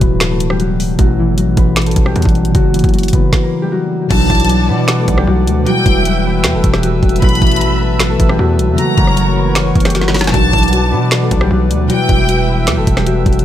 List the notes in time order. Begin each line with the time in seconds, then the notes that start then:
Already playing: B2 E3 F#3 G3 E4 F#4
0.01 D1 B3 B4, kick, closed hi-hat
0.20 finger snap, snare, closed hi-hat
0.31 A3 A4
0.40 closed hi-hat
0.50 G3 G4, cross-stick
0.60 F#3 F#4, closed hi-hat
0.80 open hi-hat
0.95 A1 B2 F#3 A3 F#4, kick, closed hi-hat
1.02 E4
1.19 E3 E4
1.28 G1
1.38 F#3 F#4, closed hi-hat
1.43 A1
1.57 A1 B3 B4, kick, closed hi-hat
1.76 finger snap, snare, closed hi-hat
1.82 closed hi-hat
1.86 A3 A4, closed hi-hat
1.91 closed hi-hat
1.96 A1, kick, closed hi-hat
2.06 G3 G4, cross-stick
2.16 E2 F#3 F#4, closed hi-hat
2.22 A1, kick, closed hi-hat
2.29 closed hi-hat
2.35 closed hi-hat
2.45 closed hi-hat
2.51 F#1 C#3 A#3 F#4, kick, closed hi-hat
2.56 F#3 F#4
2.74 E3 E4, closed hi-hat
2.79 closed hi-hat
2.84 F#1, kick, closed hi-hat
2.89 closed hi-hat
2.94 F#3 F#4, closed hi-hat
2.99 closed hi-hat
3.03 closed hi-hat
3.08 closed hi-hat
3.13 F#1 B3 B4, kick, closed hi-hat
3.33 kick, snare
3.43 A#3 A#4
3.62 G3 G4
3.72 F#3 F#4
4.07 B1 B2 F#3 F#4 B4 D5 F#5 A5 D6, kick, closed hi-hat, crash
4.14 D4
4.30 B1 E3 E4, kick, closed hi-hat
4.35 closed hi-hat
4.40 closed hi-hat
4.45 closed hi-hat
4.49 F#3 F#4, closed hi-hat
4.69 B2 B3 B4
4.88 finger snap, snare, closed hi-hat
4.99 A3 A4
5.08 B1, kick, closed hi-hat
5.18 G3 G4, cross-stick
5.27 B1 F#3 F#4
5.47 D2, closed hi-hat
5.63 B2 F#3 G3 F#4 E5 G5 E6, closed hi-hat
5.70 E4
5.86 E1 E3 E4, kick, closed hi-hat
6.05 F#3 F#4, closed hi-hat
6.25 B3 B4
6.44 E2, finger snap, snare, closed hi-hat
6.54 E1 A3 A4
6.64 E1, kick, closed hi-hat
6.74 G3 G4, cross-stick, snare
6.83 F#3 F#4, closed hi-hat
7.03 E1, kick, closed hi-hat
7.09 closed hi-hat
7.16 B2, closed hi-hat
7.22 A1 F#3 A3 E4 F#4 E5 A5 B5, kick, closed hi-hat
7.29 closed hi-hat
7.35 closed hi-hat
7.42 A1 E3 E4, kick, closed hi-hat
7.47 closed hi-hat
7.51 closed hi-hat
7.56 closed hi-hat
7.61 F#3 F#4, closed hi-hat
7.81 B3 B4
8.00 finger snap, snare, closed hi-hat
8.10 A3 A4
8.20 A1, kick, closed hi-hat
8.29 G3 G4, cross-stick
8.39 E2 F#3 F#4
8.59 B1, closed hi-hat
8.68 E2
8.75 C#3 A#3 F#4 A#4 C#5 F#5 A#5 C#6, closed hi-hat
8.79 F#3 F#4
8.98 F#1 E3 E4, kick, closed hi-hat
9.07 cross-stick
9.17 F#3 F#4, closed hi-hat
9.36 B3 B4
9.55 finger snap, snare, closed hi-hat
9.66 A#3 A#4
9.75 F#1, kick, closed hi-hat
9.80 closed hi-hat
9.85 G3 G4, cross-stick, snare, closed hi-hat
9.90 closed hi-hat
9.95 F#3 F#4, snare, closed hi-hat
10.01 G1, snare
10.08 snare
10.14 snare, closed hi-hat, open hi-hat
10.19 F#1, snare, closed hi-hat
10.24 snare, closed hi-hat
10.29 B2, closed hi-hat
10.33 B1 F#3 D4 F#4 B4 D5 A5 D6, kick, closed hi-hat
10.53 B1 E3 E4, kick, closed hi-hat
10.58 closed hi-hat
10.63 closed hi-hat
10.68 closed hi-hat
10.73 F#3 F#4, closed hi-hat
10.92 B2 B3 B4
11.11 finger snap, snare, closed hi-hat
11.22 A3 A4
11.31 B1, kick, closed hi-hat
11.41 G3 G4, cross-stick
11.51 B1 F#3 F#4
11.70 D2, closed hi-hat
11.86 B2 F#3 G3 F#4 E5 G5 E6, closed hi-hat
11.93 E4
12.09 E1 E3 E4, kick, closed hi-hat
12.29 F#3 F#4, closed hi-hat
12.49 B3 B4
12.67 E2, finger snap, snare, closed hi-hat
12.77 E1 A3 A4
12.87 E1, kick, closed hi-hat
12.97 G3 G4, cross-stick, snare
13.06 F#3 F#4, closed hi-hat
13.26 E1, kick, closed hi-hat
13.33 closed hi-hat
13.39 closed hi-hat